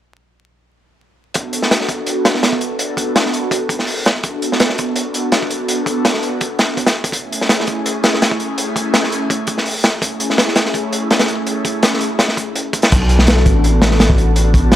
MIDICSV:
0, 0, Header, 1, 4, 480
1, 0, Start_track
1, 0, Tempo, 361446
1, 1791, Time_signature, 4, 2, 24, 8
1, 19599, End_track
2, 0, Start_track
2, 0, Title_t, "Analog synth pad"
2, 0, Program_c, 0, 89
2, 1789, Note_on_c, 0, 66, 80
2, 1789, Note_on_c, 0, 69, 98
2, 1793, Note_on_c, 0, 59, 89
2, 1793, Note_on_c, 0, 62, 78
2, 2125, Note_off_c, 0, 66, 0
2, 2125, Note_off_c, 0, 69, 0
2, 2127, Note_off_c, 0, 59, 0
2, 2127, Note_off_c, 0, 62, 0
2, 2158, Note_on_c, 0, 62, 87
2, 2158, Note_on_c, 0, 66, 87
2, 2160, Note_on_c, 0, 69, 105
2, 2163, Note_on_c, 0, 59, 92
2, 2484, Note_off_c, 0, 62, 0
2, 2484, Note_off_c, 0, 66, 0
2, 2485, Note_off_c, 0, 69, 0
2, 2487, Note_off_c, 0, 59, 0
2, 2510, Note_on_c, 0, 62, 82
2, 2510, Note_on_c, 0, 66, 81
2, 2514, Note_on_c, 0, 59, 90
2, 2515, Note_on_c, 0, 69, 98
2, 3683, Note_off_c, 0, 62, 0
2, 3683, Note_off_c, 0, 66, 0
2, 3685, Note_off_c, 0, 59, 0
2, 3685, Note_off_c, 0, 69, 0
2, 3716, Note_on_c, 0, 69, 95
2, 3717, Note_on_c, 0, 62, 80
2, 3720, Note_on_c, 0, 59, 85
2, 3720, Note_on_c, 0, 66, 81
2, 4049, Note_off_c, 0, 62, 0
2, 4049, Note_off_c, 0, 69, 0
2, 4051, Note_off_c, 0, 59, 0
2, 4051, Note_off_c, 0, 66, 0
2, 4072, Note_on_c, 0, 59, 97
2, 4073, Note_on_c, 0, 69, 108
2, 4075, Note_on_c, 0, 62, 89
2, 4077, Note_on_c, 0, 66, 93
2, 4401, Note_off_c, 0, 59, 0
2, 4402, Note_off_c, 0, 69, 0
2, 4403, Note_off_c, 0, 62, 0
2, 4404, Note_off_c, 0, 66, 0
2, 4426, Note_on_c, 0, 59, 81
2, 4426, Note_on_c, 0, 66, 76
2, 4426, Note_on_c, 0, 69, 92
2, 4427, Note_on_c, 0, 62, 73
2, 4521, Note_off_c, 0, 59, 0
2, 4521, Note_off_c, 0, 66, 0
2, 4521, Note_off_c, 0, 69, 0
2, 4522, Note_off_c, 0, 62, 0
2, 5625, Note_on_c, 0, 62, 85
2, 5627, Note_on_c, 0, 66, 81
2, 5627, Note_on_c, 0, 69, 98
2, 5630, Note_on_c, 0, 59, 88
2, 5963, Note_off_c, 0, 62, 0
2, 5964, Note_off_c, 0, 66, 0
2, 5964, Note_off_c, 0, 69, 0
2, 5966, Note_off_c, 0, 59, 0
2, 5986, Note_on_c, 0, 59, 99
2, 5987, Note_on_c, 0, 62, 86
2, 5987, Note_on_c, 0, 69, 105
2, 5988, Note_on_c, 0, 66, 88
2, 6318, Note_off_c, 0, 59, 0
2, 6319, Note_off_c, 0, 62, 0
2, 6319, Note_off_c, 0, 66, 0
2, 6319, Note_off_c, 0, 69, 0
2, 6343, Note_on_c, 0, 69, 98
2, 6345, Note_on_c, 0, 62, 79
2, 6347, Note_on_c, 0, 59, 87
2, 6347, Note_on_c, 0, 66, 83
2, 7519, Note_off_c, 0, 69, 0
2, 7520, Note_off_c, 0, 62, 0
2, 7522, Note_off_c, 0, 59, 0
2, 7522, Note_off_c, 0, 66, 0
2, 7542, Note_on_c, 0, 59, 89
2, 7543, Note_on_c, 0, 69, 96
2, 7544, Note_on_c, 0, 62, 86
2, 7546, Note_on_c, 0, 66, 82
2, 7882, Note_off_c, 0, 59, 0
2, 7882, Note_off_c, 0, 69, 0
2, 7883, Note_off_c, 0, 62, 0
2, 7884, Note_off_c, 0, 66, 0
2, 7913, Note_on_c, 0, 66, 88
2, 7915, Note_on_c, 0, 62, 92
2, 7916, Note_on_c, 0, 59, 100
2, 7916, Note_on_c, 0, 69, 114
2, 8242, Note_off_c, 0, 66, 0
2, 8243, Note_off_c, 0, 59, 0
2, 8243, Note_off_c, 0, 62, 0
2, 8243, Note_off_c, 0, 69, 0
2, 8273, Note_on_c, 0, 66, 76
2, 8274, Note_on_c, 0, 62, 76
2, 8274, Note_on_c, 0, 69, 86
2, 8275, Note_on_c, 0, 59, 82
2, 8365, Note_off_c, 0, 62, 0
2, 8365, Note_off_c, 0, 66, 0
2, 8365, Note_off_c, 0, 69, 0
2, 8366, Note_off_c, 0, 59, 0
2, 9475, Note_on_c, 0, 57, 87
2, 9475, Note_on_c, 0, 61, 83
2, 9475, Note_on_c, 0, 64, 85
2, 9476, Note_on_c, 0, 68, 100
2, 9808, Note_off_c, 0, 57, 0
2, 9808, Note_off_c, 0, 61, 0
2, 9808, Note_off_c, 0, 64, 0
2, 9809, Note_off_c, 0, 68, 0
2, 9830, Note_on_c, 0, 64, 89
2, 9831, Note_on_c, 0, 57, 96
2, 9831, Note_on_c, 0, 61, 85
2, 9832, Note_on_c, 0, 68, 102
2, 10160, Note_off_c, 0, 64, 0
2, 10161, Note_off_c, 0, 57, 0
2, 10161, Note_off_c, 0, 61, 0
2, 10161, Note_off_c, 0, 68, 0
2, 10182, Note_on_c, 0, 68, 97
2, 10184, Note_on_c, 0, 61, 83
2, 10184, Note_on_c, 0, 64, 85
2, 10188, Note_on_c, 0, 57, 90
2, 11359, Note_off_c, 0, 68, 0
2, 11360, Note_off_c, 0, 61, 0
2, 11360, Note_off_c, 0, 64, 0
2, 11362, Note_off_c, 0, 57, 0
2, 11391, Note_on_c, 0, 57, 89
2, 11393, Note_on_c, 0, 61, 84
2, 11394, Note_on_c, 0, 64, 80
2, 11394, Note_on_c, 0, 68, 99
2, 11726, Note_off_c, 0, 57, 0
2, 11727, Note_off_c, 0, 61, 0
2, 11728, Note_off_c, 0, 64, 0
2, 11728, Note_off_c, 0, 68, 0
2, 11743, Note_on_c, 0, 64, 96
2, 11745, Note_on_c, 0, 68, 107
2, 11746, Note_on_c, 0, 61, 92
2, 11749, Note_on_c, 0, 57, 102
2, 12077, Note_off_c, 0, 64, 0
2, 12077, Note_off_c, 0, 68, 0
2, 12078, Note_off_c, 0, 61, 0
2, 12079, Note_off_c, 0, 57, 0
2, 12103, Note_on_c, 0, 57, 81
2, 12105, Note_on_c, 0, 64, 73
2, 12106, Note_on_c, 0, 61, 75
2, 12106, Note_on_c, 0, 68, 91
2, 12200, Note_off_c, 0, 57, 0
2, 12200, Note_off_c, 0, 64, 0
2, 12201, Note_off_c, 0, 61, 0
2, 12201, Note_off_c, 0, 68, 0
2, 13299, Note_on_c, 0, 57, 86
2, 13300, Note_on_c, 0, 68, 100
2, 13301, Note_on_c, 0, 64, 84
2, 13302, Note_on_c, 0, 61, 79
2, 13640, Note_off_c, 0, 57, 0
2, 13641, Note_off_c, 0, 64, 0
2, 13641, Note_off_c, 0, 68, 0
2, 13642, Note_off_c, 0, 61, 0
2, 13663, Note_on_c, 0, 57, 92
2, 13666, Note_on_c, 0, 61, 86
2, 13666, Note_on_c, 0, 64, 91
2, 13668, Note_on_c, 0, 68, 103
2, 13997, Note_off_c, 0, 57, 0
2, 13998, Note_off_c, 0, 61, 0
2, 13998, Note_off_c, 0, 64, 0
2, 13999, Note_off_c, 0, 68, 0
2, 14014, Note_on_c, 0, 68, 99
2, 14015, Note_on_c, 0, 57, 89
2, 14015, Note_on_c, 0, 64, 83
2, 14016, Note_on_c, 0, 61, 80
2, 15195, Note_off_c, 0, 64, 0
2, 15195, Note_off_c, 0, 68, 0
2, 15196, Note_off_c, 0, 57, 0
2, 15196, Note_off_c, 0, 61, 0
2, 15219, Note_on_c, 0, 57, 92
2, 15220, Note_on_c, 0, 68, 98
2, 15221, Note_on_c, 0, 61, 80
2, 15224, Note_on_c, 0, 64, 79
2, 15560, Note_off_c, 0, 57, 0
2, 15561, Note_off_c, 0, 61, 0
2, 15561, Note_off_c, 0, 68, 0
2, 15563, Note_off_c, 0, 64, 0
2, 15591, Note_on_c, 0, 68, 114
2, 15593, Note_on_c, 0, 61, 92
2, 15596, Note_on_c, 0, 64, 94
2, 15598, Note_on_c, 0, 57, 101
2, 15921, Note_off_c, 0, 68, 0
2, 15922, Note_off_c, 0, 61, 0
2, 15924, Note_off_c, 0, 57, 0
2, 15924, Note_off_c, 0, 64, 0
2, 15946, Note_on_c, 0, 68, 91
2, 15947, Note_on_c, 0, 64, 76
2, 15949, Note_on_c, 0, 57, 78
2, 15952, Note_on_c, 0, 61, 73
2, 16041, Note_off_c, 0, 68, 0
2, 16042, Note_off_c, 0, 64, 0
2, 16043, Note_off_c, 0, 57, 0
2, 16044, Note_off_c, 0, 61, 0
2, 17154, Note_on_c, 0, 59, 94
2, 17154, Note_on_c, 0, 66, 87
2, 17154, Note_on_c, 0, 69, 101
2, 17157, Note_on_c, 0, 62, 86
2, 17487, Note_off_c, 0, 69, 0
2, 17488, Note_off_c, 0, 59, 0
2, 17488, Note_off_c, 0, 66, 0
2, 17489, Note_off_c, 0, 62, 0
2, 17517, Note_on_c, 0, 69, 107
2, 17518, Note_on_c, 0, 66, 92
2, 17519, Note_on_c, 0, 59, 102
2, 17520, Note_on_c, 0, 62, 92
2, 17844, Note_off_c, 0, 66, 0
2, 17844, Note_off_c, 0, 69, 0
2, 17845, Note_off_c, 0, 59, 0
2, 17845, Note_off_c, 0, 62, 0
2, 17869, Note_on_c, 0, 69, 102
2, 17871, Note_on_c, 0, 62, 83
2, 17872, Note_on_c, 0, 59, 97
2, 17872, Note_on_c, 0, 66, 84
2, 19043, Note_off_c, 0, 62, 0
2, 19043, Note_off_c, 0, 69, 0
2, 19044, Note_off_c, 0, 59, 0
2, 19044, Note_off_c, 0, 66, 0
2, 19075, Note_on_c, 0, 69, 97
2, 19077, Note_on_c, 0, 59, 90
2, 19078, Note_on_c, 0, 66, 86
2, 19079, Note_on_c, 0, 62, 85
2, 19408, Note_off_c, 0, 69, 0
2, 19410, Note_off_c, 0, 59, 0
2, 19410, Note_off_c, 0, 62, 0
2, 19410, Note_off_c, 0, 66, 0
2, 19444, Note_on_c, 0, 59, 105
2, 19445, Note_on_c, 0, 62, 95
2, 19445, Note_on_c, 0, 66, 94
2, 19446, Note_on_c, 0, 69, 112
2, 19599, Note_off_c, 0, 59, 0
2, 19599, Note_off_c, 0, 62, 0
2, 19599, Note_off_c, 0, 66, 0
2, 19599, Note_off_c, 0, 69, 0
2, 19599, End_track
3, 0, Start_track
3, 0, Title_t, "Sub bass"
3, 0, Program_c, 1, 38
3, 17164, Note_on_c, 1, 35, 104
3, 17859, Note_off_c, 1, 35, 0
3, 17875, Note_on_c, 1, 33, 98
3, 19599, Note_off_c, 1, 33, 0
3, 19599, End_track
4, 0, Start_track
4, 0, Title_t, "Drums"
4, 1784, Note_on_c, 9, 42, 88
4, 1798, Note_on_c, 9, 36, 107
4, 1916, Note_off_c, 9, 42, 0
4, 1931, Note_off_c, 9, 36, 0
4, 2030, Note_on_c, 9, 42, 65
4, 2157, Note_on_c, 9, 38, 44
4, 2162, Note_off_c, 9, 42, 0
4, 2274, Note_off_c, 9, 38, 0
4, 2274, Note_on_c, 9, 38, 108
4, 2279, Note_on_c, 9, 42, 87
4, 2398, Note_off_c, 9, 38, 0
4, 2398, Note_on_c, 9, 38, 48
4, 2412, Note_off_c, 9, 42, 0
4, 2505, Note_on_c, 9, 36, 97
4, 2507, Note_on_c, 9, 42, 65
4, 2531, Note_off_c, 9, 38, 0
4, 2637, Note_off_c, 9, 36, 0
4, 2640, Note_off_c, 9, 42, 0
4, 2743, Note_on_c, 9, 42, 79
4, 2875, Note_off_c, 9, 42, 0
4, 2989, Note_on_c, 9, 38, 105
4, 2992, Note_on_c, 9, 42, 76
4, 3115, Note_off_c, 9, 38, 0
4, 3115, Note_on_c, 9, 38, 48
4, 3124, Note_off_c, 9, 42, 0
4, 3226, Note_off_c, 9, 38, 0
4, 3226, Note_on_c, 9, 38, 95
4, 3230, Note_on_c, 9, 42, 83
4, 3354, Note_on_c, 9, 36, 87
4, 3359, Note_off_c, 9, 38, 0
4, 3363, Note_off_c, 9, 42, 0
4, 3465, Note_on_c, 9, 42, 67
4, 3487, Note_off_c, 9, 36, 0
4, 3598, Note_off_c, 9, 42, 0
4, 3705, Note_on_c, 9, 42, 84
4, 3837, Note_off_c, 9, 42, 0
4, 3944, Note_on_c, 9, 36, 91
4, 3953, Note_on_c, 9, 42, 67
4, 4077, Note_off_c, 9, 36, 0
4, 4085, Note_off_c, 9, 42, 0
4, 4192, Note_on_c, 9, 38, 119
4, 4192, Note_on_c, 9, 42, 82
4, 4323, Note_off_c, 9, 38, 0
4, 4323, Note_on_c, 9, 38, 40
4, 4324, Note_off_c, 9, 42, 0
4, 4429, Note_on_c, 9, 42, 67
4, 4455, Note_off_c, 9, 38, 0
4, 4562, Note_off_c, 9, 42, 0
4, 4663, Note_on_c, 9, 36, 98
4, 4669, Note_on_c, 9, 42, 89
4, 4796, Note_off_c, 9, 36, 0
4, 4802, Note_off_c, 9, 42, 0
4, 4903, Note_on_c, 9, 36, 98
4, 4912, Note_on_c, 9, 42, 65
4, 5034, Note_on_c, 9, 38, 39
4, 5035, Note_off_c, 9, 36, 0
4, 5045, Note_off_c, 9, 42, 0
4, 5139, Note_on_c, 9, 46, 80
4, 5166, Note_off_c, 9, 38, 0
4, 5272, Note_off_c, 9, 46, 0
4, 5387, Note_on_c, 9, 42, 60
4, 5395, Note_on_c, 9, 38, 110
4, 5520, Note_off_c, 9, 42, 0
4, 5528, Note_off_c, 9, 38, 0
4, 5622, Note_on_c, 9, 42, 76
4, 5627, Note_on_c, 9, 36, 96
4, 5755, Note_off_c, 9, 42, 0
4, 5760, Note_off_c, 9, 36, 0
4, 5872, Note_on_c, 9, 42, 58
4, 6004, Note_off_c, 9, 42, 0
4, 6006, Note_on_c, 9, 38, 41
4, 6106, Note_on_c, 9, 42, 85
4, 6111, Note_off_c, 9, 38, 0
4, 6111, Note_on_c, 9, 38, 119
4, 6229, Note_off_c, 9, 38, 0
4, 6229, Note_on_c, 9, 38, 52
4, 6239, Note_off_c, 9, 42, 0
4, 6348, Note_on_c, 9, 42, 69
4, 6359, Note_on_c, 9, 36, 88
4, 6362, Note_off_c, 9, 38, 0
4, 6481, Note_off_c, 9, 42, 0
4, 6492, Note_off_c, 9, 36, 0
4, 6582, Note_on_c, 9, 42, 86
4, 6714, Note_off_c, 9, 42, 0
4, 6827, Note_on_c, 9, 42, 59
4, 6960, Note_off_c, 9, 42, 0
4, 7064, Note_on_c, 9, 42, 78
4, 7068, Note_on_c, 9, 38, 104
4, 7196, Note_off_c, 9, 42, 0
4, 7201, Note_off_c, 9, 38, 0
4, 7204, Note_on_c, 9, 36, 93
4, 7311, Note_on_c, 9, 42, 69
4, 7337, Note_off_c, 9, 36, 0
4, 7443, Note_off_c, 9, 42, 0
4, 7550, Note_on_c, 9, 42, 90
4, 7682, Note_off_c, 9, 42, 0
4, 7785, Note_on_c, 9, 36, 91
4, 7793, Note_on_c, 9, 42, 68
4, 7918, Note_off_c, 9, 36, 0
4, 7926, Note_off_c, 9, 42, 0
4, 8032, Note_on_c, 9, 38, 118
4, 8035, Note_on_c, 9, 42, 91
4, 8148, Note_off_c, 9, 38, 0
4, 8148, Note_on_c, 9, 38, 41
4, 8168, Note_off_c, 9, 42, 0
4, 8269, Note_on_c, 9, 42, 73
4, 8281, Note_off_c, 9, 38, 0
4, 8402, Note_off_c, 9, 42, 0
4, 8508, Note_on_c, 9, 42, 80
4, 8514, Note_on_c, 9, 36, 95
4, 8641, Note_off_c, 9, 42, 0
4, 8647, Note_off_c, 9, 36, 0
4, 8747, Note_on_c, 9, 42, 55
4, 8752, Note_on_c, 9, 38, 91
4, 8880, Note_off_c, 9, 42, 0
4, 8885, Note_off_c, 9, 38, 0
4, 8992, Note_on_c, 9, 36, 96
4, 8996, Note_on_c, 9, 42, 78
4, 9116, Note_on_c, 9, 38, 99
4, 9124, Note_off_c, 9, 42, 0
4, 9124, Note_on_c, 9, 42, 61
4, 9125, Note_off_c, 9, 36, 0
4, 9249, Note_off_c, 9, 38, 0
4, 9257, Note_off_c, 9, 42, 0
4, 9349, Note_on_c, 9, 36, 95
4, 9353, Note_on_c, 9, 42, 85
4, 9460, Note_off_c, 9, 36, 0
4, 9460, Note_on_c, 9, 36, 98
4, 9472, Note_off_c, 9, 42, 0
4, 9472, Note_on_c, 9, 42, 86
4, 9593, Note_off_c, 9, 36, 0
4, 9605, Note_off_c, 9, 42, 0
4, 9727, Note_on_c, 9, 42, 61
4, 9846, Note_on_c, 9, 38, 47
4, 9860, Note_off_c, 9, 42, 0
4, 9951, Note_off_c, 9, 38, 0
4, 9951, Note_on_c, 9, 38, 108
4, 9958, Note_on_c, 9, 42, 86
4, 10084, Note_off_c, 9, 38, 0
4, 10091, Note_off_c, 9, 42, 0
4, 10093, Note_on_c, 9, 38, 52
4, 10187, Note_on_c, 9, 42, 61
4, 10195, Note_on_c, 9, 36, 85
4, 10226, Note_off_c, 9, 38, 0
4, 10320, Note_off_c, 9, 42, 0
4, 10328, Note_off_c, 9, 36, 0
4, 10435, Note_on_c, 9, 42, 92
4, 10568, Note_off_c, 9, 42, 0
4, 10672, Note_on_c, 9, 42, 75
4, 10675, Note_on_c, 9, 38, 102
4, 10802, Note_off_c, 9, 38, 0
4, 10802, Note_on_c, 9, 38, 46
4, 10804, Note_off_c, 9, 42, 0
4, 10915, Note_on_c, 9, 42, 91
4, 10917, Note_off_c, 9, 38, 0
4, 10917, Note_on_c, 9, 38, 100
4, 11041, Note_on_c, 9, 36, 88
4, 11048, Note_off_c, 9, 42, 0
4, 11050, Note_off_c, 9, 38, 0
4, 11152, Note_on_c, 9, 42, 67
4, 11174, Note_off_c, 9, 36, 0
4, 11285, Note_off_c, 9, 42, 0
4, 11391, Note_on_c, 9, 42, 88
4, 11523, Note_off_c, 9, 42, 0
4, 11630, Note_on_c, 9, 36, 82
4, 11637, Note_on_c, 9, 42, 66
4, 11763, Note_off_c, 9, 36, 0
4, 11770, Note_off_c, 9, 42, 0
4, 11868, Note_on_c, 9, 38, 120
4, 11871, Note_on_c, 9, 42, 86
4, 11998, Note_off_c, 9, 38, 0
4, 11998, Note_on_c, 9, 38, 47
4, 12003, Note_off_c, 9, 42, 0
4, 12116, Note_on_c, 9, 42, 67
4, 12131, Note_off_c, 9, 38, 0
4, 12249, Note_off_c, 9, 42, 0
4, 12351, Note_on_c, 9, 36, 111
4, 12357, Note_on_c, 9, 42, 81
4, 12484, Note_off_c, 9, 36, 0
4, 12490, Note_off_c, 9, 42, 0
4, 12574, Note_on_c, 9, 42, 68
4, 12585, Note_on_c, 9, 36, 90
4, 12707, Note_off_c, 9, 42, 0
4, 12718, Note_off_c, 9, 36, 0
4, 12718, Note_on_c, 9, 38, 35
4, 12826, Note_on_c, 9, 46, 83
4, 12851, Note_off_c, 9, 38, 0
4, 12958, Note_off_c, 9, 46, 0
4, 13065, Note_on_c, 9, 42, 73
4, 13066, Note_on_c, 9, 38, 117
4, 13198, Note_off_c, 9, 42, 0
4, 13199, Note_off_c, 9, 38, 0
4, 13303, Note_on_c, 9, 36, 113
4, 13310, Note_on_c, 9, 42, 93
4, 13436, Note_off_c, 9, 36, 0
4, 13442, Note_off_c, 9, 42, 0
4, 13545, Note_on_c, 9, 42, 66
4, 13678, Note_off_c, 9, 42, 0
4, 13678, Note_on_c, 9, 38, 39
4, 13786, Note_off_c, 9, 38, 0
4, 13786, Note_on_c, 9, 38, 105
4, 13799, Note_on_c, 9, 42, 79
4, 13916, Note_off_c, 9, 38, 0
4, 13916, Note_on_c, 9, 38, 46
4, 13931, Note_off_c, 9, 42, 0
4, 14017, Note_on_c, 9, 42, 78
4, 14020, Note_off_c, 9, 38, 0
4, 14020, Note_on_c, 9, 38, 104
4, 14149, Note_off_c, 9, 38, 0
4, 14149, Note_on_c, 9, 38, 45
4, 14150, Note_off_c, 9, 42, 0
4, 14264, Note_on_c, 9, 36, 85
4, 14271, Note_on_c, 9, 42, 59
4, 14282, Note_off_c, 9, 38, 0
4, 14397, Note_off_c, 9, 36, 0
4, 14404, Note_off_c, 9, 42, 0
4, 14509, Note_on_c, 9, 42, 76
4, 14642, Note_off_c, 9, 42, 0
4, 14748, Note_on_c, 9, 42, 71
4, 14753, Note_on_c, 9, 38, 99
4, 14866, Note_off_c, 9, 38, 0
4, 14866, Note_off_c, 9, 42, 0
4, 14866, Note_on_c, 9, 38, 108
4, 14866, Note_on_c, 9, 42, 84
4, 14982, Note_off_c, 9, 42, 0
4, 14982, Note_on_c, 9, 42, 70
4, 14999, Note_off_c, 9, 38, 0
4, 15115, Note_off_c, 9, 42, 0
4, 15226, Note_on_c, 9, 42, 85
4, 15359, Note_off_c, 9, 42, 0
4, 15467, Note_on_c, 9, 36, 98
4, 15468, Note_on_c, 9, 42, 62
4, 15600, Note_off_c, 9, 36, 0
4, 15601, Note_off_c, 9, 42, 0
4, 15705, Note_on_c, 9, 42, 85
4, 15709, Note_on_c, 9, 38, 100
4, 15837, Note_off_c, 9, 42, 0
4, 15842, Note_off_c, 9, 38, 0
4, 15850, Note_on_c, 9, 38, 40
4, 15944, Note_on_c, 9, 42, 64
4, 15983, Note_off_c, 9, 38, 0
4, 16077, Note_off_c, 9, 42, 0
4, 16186, Note_on_c, 9, 38, 97
4, 16195, Note_on_c, 9, 42, 70
4, 16311, Note_off_c, 9, 38, 0
4, 16311, Note_on_c, 9, 38, 48
4, 16327, Note_off_c, 9, 42, 0
4, 16430, Note_on_c, 9, 36, 86
4, 16435, Note_on_c, 9, 42, 66
4, 16444, Note_off_c, 9, 38, 0
4, 16562, Note_off_c, 9, 36, 0
4, 16568, Note_off_c, 9, 42, 0
4, 16673, Note_on_c, 9, 42, 81
4, 16806, Note_off_c, 9, 42, 0
4, 16909, Note_on_c, 9, 36, 99
4, 16909, Note_on_c, 9, 42, 70
4, 17028, Note_off_c, 9, 42, 0
4, 17028, Note_on_c, 9, 42, 58
4, 17041, Note_off_c, 9, 36, 0
4, 17041, Note_on_c, 9, 38, 100
4, 17156, Note_off_c, 9, 42, 0
4, 17156, Note_on_c, 9, 42, 92
4, 17157, Note_on_c, 9, 49, 100
4, 17163, Note_on_c, 9, 36, 114
4, 17174, Note_off_c, 9, 38, 0
4, 17289, Note_off_c, 9, 42, 0
4, 17289, Note_off_c, 9, 49, 0
4, 17295, Note_off_c, 9, 36, 0
4, 17386, Note_on_c, 9, 42, 70
4, 17514, Note_on_c, 9, 38, 48
4, 17519, Note_off_c, 9, 42, 0
4, 17621, Note_on_c, 9, 42, 89
4, 17638, Note_off_c, 9, 38, 0
4, 17638, Note_on_c, 9, 38, 124
4, 17752, Note_off_c, 9, 38, 0
4, 17752, Note_on_c, 9, 38, 56
4, 17754, Note_off_c, 9, 42, 0
4, 17871, Note_on_c, 9, 42, 66
4, 17875, Note_on_c, 9, 36, 90
4, 17885, Note_off_c, 9, 38, 0
4, 18003, Note_off_c, 9, 42, 0
4, 18008, Note_off_c, 9, 36, 0
4, 18114, Note_on_c, 9, 42, 92
4, 18246, Note_off_c, 9, 42, 0
4, 18348, Note_on_c, 9, 38, 112
4, 18353, Note_on_c, 9, 42, 88
4, 18472, Note_off_c, 9, 38, 0
4, 18472, Note_on_c, 9, 38, 43
4, 18486, Note_off_c, 9, 42, 0
4, 18592, Note_off_c, 9, 38, 0
4, 18592, Note_on_c, 9, 38, 123
4, 18596, Note_on_c, 9, 42, 89
4, 18720, Note_on_c, 9, 36, 95
4, 18724, Note_off_c, 9, 38, 0
4, 18729, Note_off_c, 9, 42, 0
4, 18832, Note_on_c, 9, 42, 72
4, 18853, Note_off_c, 9, 36, 0
4, 18965, Note_off_c, 9, 42, 0
4, 19069, Note_on_c, 9, 42, 82
4, 19201, Note_off_c, 9, 42, 0
4, 19310, Note_on_c, 9, 36, 98
4, 19318, Note_on_c, 9, 42, 73
4, 19442, Note_off_c, 9, 36, 0
4, 19451, Note_off_c, 9, 42, 0
4, 19544, Note_on_c, 9, 38, 116
4, 19550, Note_on_c, 9, 42, 97
4, 19599, Note_off_c, 9, 38, 0
4, 19599, Note_off_c, 9, 42, 0
4, 19599, End_track
0, 0, End_of_file